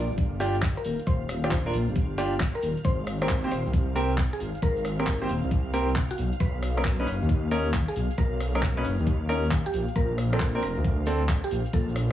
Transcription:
Already playing: D5 F5
0.11 G1, cabasa
0.17 kick, closed hi-hat, cabasa
0.40 D4 F4 G4, open hi-hat, cabasa
0.54 closed hi-hat, cabasa
0.62 kick, clap, closed hi-hat, cabasa
0.77 A#4, closed hi-hat, cabasa
0.84 D#1, open hi-hat, cabasa
0.99 closed hi-hat, cabasa
1.07 D#1 C5, kick, closed hi-hat, cabasa
1.29 cross-stick, open hi-hat, cabasa
1.44 D4 F4 G4, cross-stick, closed hi-hat, cabasa
1.51 C5, kick, clap, closed hi-hat, cabasa
1.66 D4 F4 A#4
1.74 A#1, open hi-hat, cabasa
1.88 G1, cabasa
1.96 kick, closed hi-hat, cabasa
2.18 D4 F4 G4, open hi-hat, cabasa
2.33 closed hi-hat, cabasa
2.40 kick, clap, closed hi-hat, cabasa
2.55 A#4, closed hi-hat, cabasa
2.62 D#1, open hi-hat, cabasa
2.77 closed hi-hat, cabasa
2.84 G#1 C5, kick, closed hi-hat, cabasa
3.07 cross-stick, open hi-hat, cabasa
3.22 C4 G4 A#4 C5, cross-stick, closed hi-hat, cabasa
3.29 kick, clap, closed hi-hat, cabasa
3.44 C4 G4 C5
3.51 D#1 C5, open hi-hat, cabasa
3.66 C2, cabasa
3.74 kick, closed hi-hat, cabasa
3.96 C4 G4 A#4, open hi-hat, cabasa
4.11 closed hi-hat, cabasa
4.18 kick, clap, closed hi-hat, cabasa
4.33 G#4, closed hi-hat, cabasa
4.40 G#1, open hi-hat, cabasa
4.55 closed hi-hat, cabasa
4.62 G#1 A#4, kick, closed hi-hat, cabasa
4.77 cabasa
4.85 cross-stick, open hi-hat, cabasa
4.99 C4 G4 A#4, cross-stick, closed hi-hat, cabasa
5.07 A#4, kick, clap, closed hi-hat, cabasa
5.22 C4 G4 C5
5.29 D#1, open hi-hat, cabasa
5.43 C2, cabasa
5.51 kick, closed hi-hat, cabasa
5.74 C4 G4 A#4, open hi-hat, cabasa
5.88 closed hi-hat, cabasa
5.96 kick, clap, closed hi-hat, cabasa
6.10 F#4, closed hi-hat, cabasa
6.18 B1, open hi-hat, cabasa
6.33 closed hi-hat, cabasa
6.40 B1 B4, kick, closed hi-hat, cabasa
6.63 cross-stick, open hi-hat, cabasa
6.77 C#4 D#4 A#4 B4, cross-stick, closed hi-hat, cabasa
6.85 kick, clap, closed hi-hat, cabasa
7.00 C#4 D#4 B4
7.06 F#1 B4, open hi-hat, cabasa
7.22 D#2, cabasa
7.29 kick, closed hi-hat, cabasa
7.51 C#4 D#4 A#4, open hi-hat, cabasa
7.66 closed hi-hat, cabasa
7.74 kick, clap, closed hi-hat, cabasa
7.88 G#4, closed hi-hat, cabasa
7.96 B1, open hi-hat, cabasa
8.11 closed hi-hat, cabasa
8.18 B1 A#4, kick, closed hi-hat, cabasa
8.40 cross-stick, open hi-hat, cabasa
8.55 C#4 D#4 A#4, cross-stick, closed hi-hat, cabasa
8.62 A#4, kick, clap, closed hi-hat, cabasa
8.77 C#4 D#4 B4
8.85 F#1, open hi-hat, cabasa
8.99 D#2, cabasa
9.07 kick, closed hi-hat, cabasa
9.29 C#4 D#4 A#4, open hi-hat, cabasa
9.44 closed hi-hat, cabasa
9.51 kick, clap, closed hi-hat, cabasa
9.66 G4, closed hi-hat, cabasa
9.74 A#1, open hi-hat, cabasa
9.88 closed hi-hat, cabasa
9.95 A#1 A#4, kick, closed hi-hat, cabasa
10.18 cross-stick, open hi-hat, cabasa
10.33 C4 D4 A4 A#4, cross-stick, closed hi-hat, cabasa
10.40 kick, clap, closed hi-hat, cabasa
10.55 C4 D4 A#4
10.62 F1 A#4, open hi-hat, cabasa
10.77 D2, cabasa
10.84 kick, closed hi-hat, cabasa
11.06 C4 D4 A4, open hi-hat, cabasa
11.22 closed hi-hat, cabasa
11.29 kick, clap, closed hi-hat, cabasa
11.44 G4, closed hi-hat, cabasa
11.51 A#1, open hi-hat, cabasa
11.66 closed hi-hat, cabasa
11.73 A#1 A4, kick, closed hi-hat, cabasa
11.89 cabasa
11.96 cross-stick, open hi-hat, cabasa

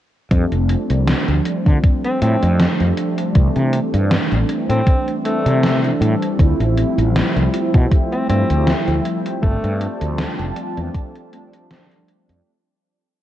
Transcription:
0.30 F2 F3 G3 A3 C4 D4, kick, closed hi-hat
0.52 F1, closed hi-hat
0.69 closed hi-hat
0.90 C2, closed hi-hat
1.08 snare, closed hi-hat
1.28 D2, closed hi-hat
1.45 closed hi-hat
1.66 D3, kick, closed hi-hat
1.83 kick, closed hi-hat
2.04 C4, closed hi-hat
2.20 A2 F3 G3 A3 C4 D4, closed hi-hat
2.42 F2, closed hi-hat
2.59 snare, closed hi-hat
2.80 F2, closed hi-hat
2.97 closed hi-hat
3.18 closed hi-hat
3.35 C2 E3 G3 A3 C4 D4, kick, closed hi-hat
3.56 C3, closed hi-hat
3.73 closed hi-hat
3.94 G2, closed hi-hat
4.11 snare, closed hi-hat
4.32 A1, closed hi-hat
4.49 closed hi-hat
4.70 A2 C4, closed hi-hat
4.87 kick, closed hi-hat
5.08 closed hi-hat
5.24 E3 G3 A3 C4 D4, closed hi-hat
5.46 C3, closed hi-hat
5.63 snare, closed hi-hat
5.84 closed hi-hat
6.01 A2, closed hi-hat
6.22 closed hi-hat
6.37 D2 F3 G3 A3 C4 E4 C5 E5 G5, kick, closed hi-hat
6.60 A1, closed hi-hat
6.77 closed hi-hat
6.98 A1, closed hi-hat
7.16 snare, closed hi-hat
7.36 C2, closed hi-hat
7.53 closed hi-hat
7.74 B2, kick, closed hi-hat
7.91 kick, closed hi-hat
8.11 C4, closed hi-hat
8.28 G2 F3 G3 A3 C4 E4, closed hi-hat
8.50 D2, closed hi-hat
8.67 snare, closed hi-hat
8.88 D2, closed hi-hat
9.05 closed hi-hat
9.26 closed hi-hat
9.42 G1 F3 G3 A3 C4 D4 F4 A5, kick, closed hi-hat
9.64 G2, closed hi-hat
9.81 closed hi-hat
10.01 D2, closed hi-hat
10.19 snare, closed hi-hat
10.40 F1, closed hi-hat
10.57 closed hi-hat
10.78 E2, closed hi-hat
10.95 kick, closed hi-hat
11.16 closed hi-hat
11.31 F3 G3 A3 C4 D4, closed hi-hat
11.53 closed hi-hat
11.71 snare, closed hi-hat
11.91 closed hi-hat
12.08 closed hi-hat
12.29 F2, closed hi-hat

